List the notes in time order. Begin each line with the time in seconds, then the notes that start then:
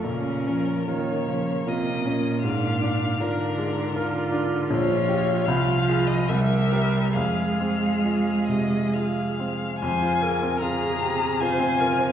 0.04 A#2 C#3 C#4 A#4
0.47 F3 C#4
0.88 D#3 A#3 F4 A#4 C#5
1.27 C#3 F3
1.66 C3 F4 A#4 D#5
2.04 A#2 C#4
2.43 G#2 D4 F5
2.82 D4
3.19 D3 D4 F4 A#4
3.58 G#3
3.95 D3 F4 A#4
4.32 D4
4.69 A#1 F3 F4 C#5
5.08 F4 G4
5.45 C2 F3 F5
5.89 F4 G#4
6.07 D#5
6.28 C2 G3 A#4 E5
6.72 G4 A#4
7.13 F2 G#3 G#4 F5
7.60 C4
8.05 F4 G#4
8.47 C3 D#5
8.93 F4 G#4 F5
9.39 C4
9.80 F2 G#5
9.84 C3 C5
10.02 F4
10.22 G#4 A#4
10.42 C4
10.60 F4 G#4 A#5
10.82 G#4
11.02 G4
11.21 G#4
11.40 F4 C5 G#5
11.59 C4
11.79 F4 A#4
11.98 C5